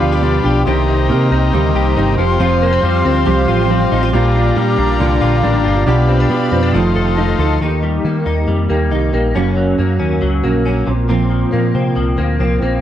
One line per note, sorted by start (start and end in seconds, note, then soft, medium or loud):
0.00 0.38 D2 medium
0.00 0.23 B2 medium
0.00 0.66 B2 medium
0.00 0.71 F3 medium
0.00 0.22 G3 medium
0.00 0.22 B3 medium
0.00 0.70 B3 medium
0.00 0.22 D4 medium
0.00 0.23 D4 medium
0.00 0.62 D4 medium
0.00 0.24 F4 medium
0.00 0.63 F4 medium
0.00 0.12 F4 medium
0.00 0.63 G4 medium
0.00 4.10 G4 medium
0.00 0.64 B4 medium
0.00 0.65 D5 medium
0.00 0.63 F5 medium
0.00 0.65 B5 medium
0.12 0.44 G4 medium
0.22 0.44 G3 medium
0.22 0.45 B3 medium
0.22 0.71 D4 medium
0.22 0.44 D4 medium
0.22 0.43 F4 medium
0.44 0.63 B1 medium
0.44 0.67 B3 soft
0.44 0.67 D4 soft
0.44 0.66 F4 medium
0.44 0.67 G4 medium
0.65 1.11 C2 loud
0.65 1.09 C3 medium
0.65 2.23 C3 medium
0.65 1.08 D#3 medium
0.65 1.09 A#3 medium
0.65 2.15 C4 medium
0.65 1.11 C4 medium
0.65 2.15 D#4 medium
0.65 2.16 G4 medium
0.65 1.75 G4 medium
0.65 1.12 G4 medium
0.65 2.16 A#4 medium
0.65 4.10 C5 medium
0.65 2.16 D#5 medium
0.65 2.16 A#5 medium
0.88 1.30 D#4 medium
1.10 1.28 C3 loud
1.10 1.31 D#3 medium
1.10 2.23 A#3 medium
1.10 1.32 A#3 medium
1.10 1.31 C4 medium
1.10 1.29 G4 medium
1.30 1.50 C2 loud
1.30 1.53 A#3 soft
1.30 1.53 C4 medium
1.30 1.96 D#4 medium
1.30 1.53 G4 medium
1.53 1.72 D2 medium
1.53 1.96 C3 medium
1.53 1.95 D#3 medium
1.53 2.18 G3 medium
1.53 1.96 A#3 medium
1.53 1.98 C4 loud
1.53 1.99 G4 loud
1.75 1.93 C2 loud
1.75 2.40 G4 medium
1.96 2.15 G1 loud
1.96 2.18 D#3 medium
1.96 2.19 A#3 medium
1.96 2.19 C4 medium
1.96 2.23 D#4 medium
1.96 2.16 G4 medium
2.16 2.37 F1 loud
2.16 2.39 F3 medium
2.16 4.09 C4 medium
2.16 2.39 C4 medium
2.16 4.09 F4 medium
2.16 2.39 F4 medium
2.16 2.40 G4 medium
2.16 4.10 G4 medium
2.16 4.11 C5 medium
2.16 7.57 F5 medium
2.16 4.12 C6 medium
2.21 2.39 F3 soft
2.39 2.77 F1 loud
2.39 2.83 F2 medium
2.39 2.83 C3 medium
2.39 4.60 F3 medium
2.39 2.82 F3 medium
2.39 2.82 C4 medium
2.39 3.48 F4 medium
2.39 2.84 F4 medium
2.39 2.85 G4 loud
2.62 2.73 A#3 medium
2.73 3.04 C4 medium
2.83 3.02 F2 loud
2.83 3.05 F3 medium
2.83 3.26 G3 medium
2.83 3.05 C4 medium
2.83 3.04 F4 medium
2.83 3.03 G4 medium
3.04 3.23 D2 medium
3.04 3.24 F3 soft
3.04 3.69 C4 medium
3.04 3.25 C4 soft
3.04 3.25 F4 medium
3.04 3.25 G4 medium
3.25 3.45 C2 loud
3.25 3.69 F2 medium
3.25 3.69 C3 medium
3.25 3.69 F3 medium
3.25 4.56 G3 medium
3.25 3.70 C4 medium
3.25 3.71 F4 medium
3.25 3.73 G4 medium
3.48 3.85 A1 loud
3.48 3.92 F4 medium
3.70 4.13 F3 medium
3.70 4.18 C4 medium
3.70 4.14 C4 medium
3.70 4.14 F4 medium
3.70 4.15 G4 medium
3.92 4.10 A1 medium
3.92 4.03 D#4 medium
4.03 4.13 F4 medium
4.12 4.50 A#1 loud
4.12 4.57 A#2 medium
4.12 5.86 A#2 medium
4.12 4.56 G3 medium
4.12 4.56 A#3 medium
4.12 5.83 D4 medium
4.12 4.58 D4 medium
4.12 5.83 F4 medium
4.12 5.21 F4 medium
4.12 4.58 F4 medium
4.12 5.84 G4 medium
4.12 6.72 G4 medium
4.12 5.85 A#4 medium
4.12 6.72 D5 medium
4.12 5.86 A#5 medium
4.35 4.77 D4 medium
4.56 4.75 A#2 medium
4.56 4.99 G3 medium
4.56 5.91 G3 medium
4.56 5.00 A#3 medium
4.56 5.00 D4 medium
4.56 5.02 F4 medium
4.78 4.97 A#1 loud
4.78 5.42 D4 medium
5.00 5.19 C2 loud
5.00 5.44 A#2 medium
5.00 5.91 D3 medium
5.00 5.42 G3 medium
5.00 5.44 A#3 medium
5.00 5.44 D4 medium
5.00 5.46 F4 loud
5.21 5.41 A#1 loud
5.21 5.63 F4 medium
5.43 5.62 A1 medium
5.43 5.86 G3 medium
5.43 5.87 A#3 medium
5.43 5.91 D4 medium
5.43 5.87 D4 medium
5.43 5.87 F4 medium
5.64 5.84 G1 medium
5.64 5.87 F4 medium
5.86 6.24 B1 loud
5.86 6.30 B2 medium
5.86 6.78 B2 medium
5.86 6.29 G3 medium
5.86 6.30 B3 medium
5.86 6.72 D4 medium
5.86 6.31 D4 loud
5.86 6.72 F4 medium
5.86 6.31 F4 loud
5.86 6.79 G4 medium
5.86 6.73 G4 medium
5.86 6.73 B4 medium
5.86 6.73 B5 medium
6.08 6.20 C4 medium
6.20 6.51 D4 medium
6.30 6.49 B2 loud
6.30 6.52 G3 medium
6.30 6.78 B3 medium
6.30 6.53 B3 medium
6.30 6.53 D4 medium
6.30 6.51 F4 medium
6.52 6.70 F2 medium
6.52 6.75 B3 soft
6.52 6.63 C4 medium
6.52 6.75 D4 medium
6.52 6.74 F4 medium
6.63 6.78 D4 medium
6.72 6.92 F1 loud
6.72 7.18 F2 medium
6.72 7.18 C3 medium
6.72 7.18 D#3 medium
6.72 7.61 F3 medium
6.72 7.18 A3 medium
6.72 7.58 D#4 medium
6.72 7.20 D#4 medium
6.72 7.59 F4 medium
6.72 7.18 F4 medium
6.72 7.60 A4 medium
6.72 7.61 A4 medium
6.72 7.60 C5 medium
6.72 7.60 D#5 medium
6.72 7.61 C6 medium
6.95 7.33 F1 medium
6.95 7.39 A4 medium
7.18 7.40 D#3 medium
7.18 7.40 A3 medium
7.18 7.61 D#4 medium
7.18 7.40 D#4 medium
7.18 7.39 F4 medium
7.39 7.58 D2 loud
7.39 7.62 A3 soft
7.39 7.62 D#4 medium
7.39 7.62 F4 medium
7.39 7.62 A4 medium
7.43 7.61 D#3 soft
7.61 7.98 D#2 medium
7.61 9.35 D#3 medium
7.61 8.04 D#3 medium
7.61 8.06 A#3 medium
7.61 8.25 D#4 medium
7.61 8.06 D#4 medium
7.61 8.06 G4 medium
7.83 8.46 G3 medium
8.05 8.23 D#3 medium
8.05 8.70 D#3 medium
8.05 8.69 A#3 medium
8.05 8.73 A#3 medium
8.05 8.70 D#4 medium
8.09 8.69 G4 medium
8.26 8.45 D#2 medium
8.26 8.90 D#4 medium
8.48 8.67 F2 medium
8.48 9.39 G3 medium
8.70 8.91 D#2 medium
8.70 9.13 A#3 medium
8.70 8.91 A#3 soft
8.70 8.92 D#4 medium
8.70 8.92 G4 medium
8.91 9.10 C2 medium
8.91 9.14 D#3 medium
8.91 9.14 A#3 medium
8.91 9.35 D#4 medium
8.91 9.13 D#4 medium
8.91 9.11 G4 medium
9.12 9.32 A#1 medium
9.12 9.78 A#3 medium
9.12 9.35 A#3 soft
9.12 9.36 D#4 soft
9.12 9.35 G4 medium
9.35 9.72 F#1 medium
9.35 10.88 F#2 medium
9.35 9.79 F#2 medium
9.35 9.79 C#3 medium
9.35 9.77 F#3 medium
9.35 9.78 A#3 medium
9.35 9.98 C#4 medium
9.35 9.79 C#4 medium
9.35 9.80 F#4 medium
9.57 10.21 F#3 medium
9.78 9.97 F#2 medium
9.78 10.44 F#3 medium
9.78 10.43 A#3 medium
9.78 10.45 A#3 medium
9.78 10.43 C#4 medium
9.78 10.42 F#4 medium
10.00 10.19 D#2 medium
10.00 10.64 C#4 medium
10.22 10.41 C#2 medium
10.22 10.92 F#3 medium
10.43 10.81 A#1 medium
10.43 10.64 F#3 soft
10.43 10.92 A#3 medium
10.43 10.66 A#3 soft
10.43 10.66 C#4 medium
10.43 10.66 F#4 medium
10.66 10.88 F#3 medium
10.66 10.88 A#3 medium
10.66 10.92 C#4 medium
10.66 10.88 C#4 medium
10.66 10.87 F#4 medium
10.87 11.43 A#1 medium
10.87 11.08 A#2 medium
10.87 11.09 A#3 soft
10.87 11.09 C4 soft
10.87 11.09 F4 medium
11.09 11.53 A#2 medium
11.09 12.81 A#2 medium
11.09 11.51 F3 medium
11.09 11.51 A#3 medium
11.09 11.74 C4 medium
11.09 11.52 C4 medium
11.09 11.54 F4 medium
11.30 11.96 F3 medium
11.52 11.72 A#2 medium
11.52 12.38 F3 medium
11.52 12.18 A#3 medium
11.52 12.17 A#3 medium
11.52 12.18 C4 medium
11.52 12.17 F4 medium
11.75 11.93 C3 medium
11.75 12.39 C4 medium
11.96 12.15 C2 medium
11.96 12.81 F3 medium
12.18 12.37 D2 medium
12.18 12.61 A#3 medium
12.18 12.39 A#3 soft
12.18 12.40 C4 medium
12.18 12.40 F4 medium
12.39 12.59 C2 medium
12.39 12.61 F3 medium
12.39 12.62 A#3 medium
12.39 12.81 C4 medium
12.39 12.62 C4 medium
12.39 12.60 F4 medium
12.61 12.80 A#1 medium
12.61 12.81 A#3 medium
12.61 12.81 A#3 soft
12.61 12.81 C4 medium
12.61 12.81 F4 medium